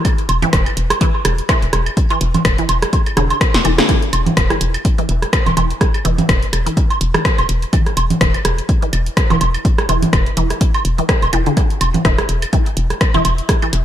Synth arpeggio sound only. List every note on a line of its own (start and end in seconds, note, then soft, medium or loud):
0.42 0.47 E3 medium
1.01 1.10 E3 medium
1.49 1.55 E3 medium
2.10 2.17 E3 medium
2.58 2.63 E3 medium
3.17 3.26 D3 loud
3.65 3.71 E3 medium
3.78 3.83 D3 medium
3.89 3.95 E3 medium
4.50 4.57 E3 medium
4.98 5.03 E3 medium
5.57 5.66 E3 medium
6.05 6.11 E3 medium
6.66 6.73 E3 medium
7.14 7.19 E3 medium
7.73 7.82 E3 medium
8.21 8.27 E3 medium
8.82 8.89 E3 medium
9.30 9.35 E3 medium
9.89 9.98 E3 medium
10.37 10.43 E3 medium
10.98 11.03 E3 medium
11.33 11.39 E3 loud
11.46 11.49 D3 medium
12.05 12.11 E4 loud
12.53 12.59 E3 medium
13.14 13.19 E4 loud
13.62 13.67 E3 medium